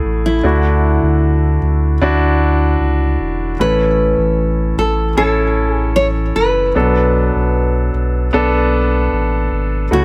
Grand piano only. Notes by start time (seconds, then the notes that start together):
Already playing: A3 E4 G#4
0.43 D3 A3 D4 E4 F#4
2.01 D4 E4 F#4
3.59 A2 E3 C#4 E4 A4
5.17 C#4 E4 A4
6.75 B2 F#3 B3 D4 A4
8.33 B3 D4 A4
9.91 C#3 A3 E4 F#4